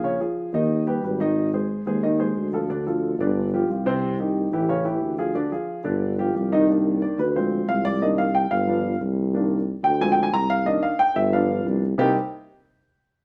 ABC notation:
X:1
M:4/4
L:1/8
Q:1/4=181
K:Cm
V:1 name="Upright piano"
[_D,_D_d] [F,FA]2 [E,Ee]2 [G,G=B] [G,GB] [E,Ee]- | [E,Ee] [A,Ac]2 [A,Ac] [E,Ee] [A,Ac]2 [F,F=A] | [D,Dd] [F,F=A]2 [D,Dd]2 [F,FG] [F,FG] [C,Cc]- | [C,Cc] [E,EG]2 [=E,=EG] [^C,^C^c] [E,EG]2 [F,FA] |
[D,Dd] [F,FA]2 [D,Dd]2 [F,FG] [F,G] [E,Ee] | z2 d =B c2 f d | e f g f3 z2 | z3 g (3a g a b f |
e f g =e f2 z2 | [C,G,B,CEG] z6 z |]
V:2 name="Upright piano"
z8 | z8 | z8 | z8 |
z8 | [E,B,D]3 z [F,A,C]4 | [E,B,D] z3 [F,=B,D] z3 | [E,B,D] z3 [F,A,C] z3 |
[E,B,D] z3 [F,=B,D]3 z | z8 |]
V:3 name="Tuba" clef=bass
B,,, z2 E,,3 A,,,2- | A,,,3 E,,3 D,,2- | D,,3 G,,,3 C,,2- | C,,3 =A,,,3 D,,2- |
D,, z2 G,,,3 C,,2- | C,,3 D,,3 C,,2- | C,,3 G,,,3 C,,2- | C,,3 D,,3 C,,2- |
C,, z2 G,,,3 C,,2 | C,, z6 z |]